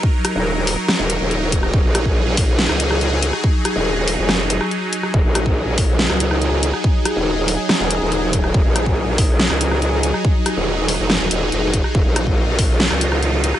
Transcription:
<<
  \new Staff \with { instrumentName = "Supersaw synth" } { \time 4/4 \key ees \minor \tempo 4 = 141 << { bes'1 | aes'1~ | aes'1 | aes'1~ |
aes'1~ | aes'1~ | aes'1 | f'1 | } \\ { <ges ees'>1~ | <ges ees'>1~ | <ges ees'>1~ | <ges ees'>1~ |
<ges ees'>1~ | <ges ees'>1~ | <ges ees'>1~ | <ges ees'>1 | } >> }
  \new Staff \with { instrumentName = "Wobble bass" } { \clef bass \time 4/4 \key ees \minor r8. ees,,4 r8 ees,,8 ees,,4~ ees,,16 | ees,,16 bes,,2 des,4. r16 | r8. ees,,4 f,,4 r4 r16 | ees,,16 bes,,2 des,4. r16 |
r8. ees,,4 r8 ees,,8 ees,,4~ ees,,16 | ees,,16 bes,,2 des,4. r16 | r8. ees,,4 f,,8 ees,,16 ees,,8 f,,8. r16 | ees,,16 bes,,2 des,4. r16 | }
  \new DrumStaff \with { instrumentName = "Drums" } \drummode { \time 4/4 bd8 <hh ss>8 r8 hho8 <ss sn>8 hh8 hh8 <hh bd>16 ss16 | bd8 <hh ss>16 bd16 r8 <hho bd>8 sn16 ss16 hh16 ss16 hh8 hh16 ss16 | bd8 <hh ss>8 r8 hho8 <ss sn>8 hh16 ss16 hh8 hh16 ss16 | bd8 <hh ss>16 bd16 r8 <hho bd>8 sn16 ss16 hh16 ss16 hh8 hh16 ss16 |
bd8 <hh ss>8 r8 hho8 <ss sn>8 hh8 hh8 <hh bd>16 ss16 | bd8 <hh ss>16 bd16 r8 <hho bd>8 sn16 ss16 hh16 ss16 hh8 hh16 ss16 | bd8 <hh ss>8 r8 hho8 <ss sn>8 hh8 hh8 <hh bd>16 ss16 | bd8 <hh ss>16 bd16 r8 <hho bd>8 sn16 ss16 hh16 ss16 hh8 hh16 ss16 | }
>>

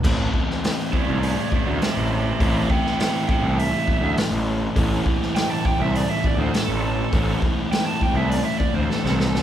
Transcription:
<<
  \new Staff \with { instrumentName = "Lead electric guitar" } { \time 4/4 \key a \minor \tempo 4 = 102 r4. <b' d''>8 <b' d''>8 <b' d''>8 <c'' e''>8 <c'' e''>8 | <c'' e''>8 <e'' g''>8 <e'' g''>8 <e'' g''>8 e''4 r4 | r4 g''16 a''16 g''16 e''16 d''16 e''16 d''16 c''16 a'8 a'8~ | a'8 r8 g''16 a''16 g''16 e''16 d''16 e''16 d''16 c''16 a'8 a'8 | }
  \new Staff \with { instrumentName = "Distorted electric guitar" } { \time 4/4 \key a \minor <a, e a c' e'>1 | <a, e a c' e'>1 | <a, e a c' e'>1 | <a, e a c' e'>1 | }
  \new Staff \with { instrumentName = "Picked electric bass" } { \clef bass \time 4/4 \key a \minor a,,8 r4 r16 c,8 r8 d,16 r16 a,,8. | a,,8 r4 r16 c,8 r8 d,16 r16 a,,8. | a,,8 r4 r16 c,8 r8 d,16 r16 a,,8. | a,,8 r4 r16 c,8 r8 d,16 r16 c,8. | }
  \new DrumStaff \with { instrumentName = "Drums" } \drummode { \time 4/4 <cymc bd>8 bd16 sn16 <hho sn>8 bd8 hho8 bd8 <hho sn>4 | <hho bd>8 bd16 sn16 <hho sn>8 bd8 hho8 bd8 <hho sn>4 | <hho bd>8 bd16 sn16 <hho sn>8 bd8 hho8 bd8 <hho sn>4 | <hho bd>8 bd8 <hho sn>8 bd8 hho8 bd8 sn16 sn16 sn16 sn16 | }
>>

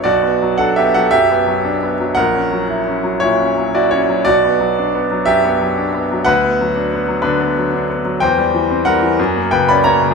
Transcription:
<<
  \new Staff \with { instrumentName = "Grand piano" } { \time 6/8 \key b \minor \tempo 4. = 59 <fis' d''>8. <a' fis''>16 <g' e''>16 <a' fis''>16 <g' e''>4. | <ais' fis''>4. <e' cis''>8. <fis' d''>16 <e' cis''>8 | <fis' d''>4. <g' e''>4. | <b' fis''>4. <d' b'>4 r8 |
<c'' g''>4 <ais' fis''>4 <b' g''>16 <d'' b''>16 <cis'' ais''>8 | }
  \new Staff \with { instrumentName = "Grand piano" } { \clef bass \time 6/8 \key b \minor b,,16 b16 fis16 d'16 b16 fis16 fis,16 b16 fis16 d'16 b16 fis16 | ais,,16 cis'16 fis16 e'16 cis'16 fis16 ais,16 cis'16 fis16 e'16 cis'16 fis16 | b,,16 b16 fis16 d'16 b16 fis16 fis,16 b16 fis16 d'16 b16 fis16 | d,16 b16 fis16 d'16 b16 fis16 d16 b16 fis16 d'16 b16 fis16 |
e,16 g16 e16 c'16 g16 e16 fis,16 ais16 cis16 cis'16 ais16 cis16 | }
>>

